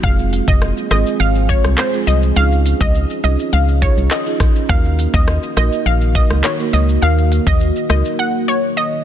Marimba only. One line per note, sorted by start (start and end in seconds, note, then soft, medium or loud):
0.03 0.57 G#3 medium
0.03 0.57 C4 medium
0.03 0.57 F4 medium
0.03 0.57 G#4 loud
0.91 1.13 G#3 medium
0.91 1.13 C4 medium
0.91 1.13 F4 medium
0.91 1.13 G#4 medium
1.49 1.71 G#3 medium
1.49 1.71 C4 medium
1.49 1.71 F4 medium
1.49 1.71 G#4 medium
1.93 2.15 G#3 medium
1.93 2.15 C4 medium
1.93 2.15 F4 medium
1.93 2.15 G#4 medium
2.36 2.90 C#4 loud
2.36 2.90 D#4 medium
2.36 2.90 F4 medium
2.36 2.90 G#4 loud
3.23 3.46 C#4 medium
3.23 3.46 D#4 medium
3.23 3.46 F4 medium
3.23 3.46 G#4 medium
3.82 4.04 C#4 medium
3.82 4.04 D#4 medium
3.82 4.04 F4 medium
3.82 4.04 G#4 medium
4.26 4.48 C#4 medium
4.26 4.48 D#4 medium
4.26 4.48 F4 medium
4.26 4.48 G#4 medium
4.69 5.23 A#3 loud
4.69 5.23 D#4 medium
4.69 5.23 F#4 medium
4.69 5.23 A#4 loud
5.56 5.79 A#3 medium
5.56 5.79 D#4 medium
5.56 5.79 F#4 medium
5.56 5.79 A#4 medium
6.15 6.37 A#3 medium
6.15 6.37 D#4 medium
6.15 6.37 F#4 medium
6.15 6.37 A#4 medium
6.59 6.81 A#3 medium
6.59 6.81 D#4 medium
6.59 6.81 F#4 medium
6.59 6.81 A#4 medium
7.02 7.56 A#3 medium
7.02 7.56 D#4 medium
7.02 7.56 F#4 medium
7.02 7.56 A#4 loud
7.89 8.12 A#3 medium
7.89 8.12 D#4 medium
7.89 8.12 F#4 medium
7.89 8.12 A#4 medium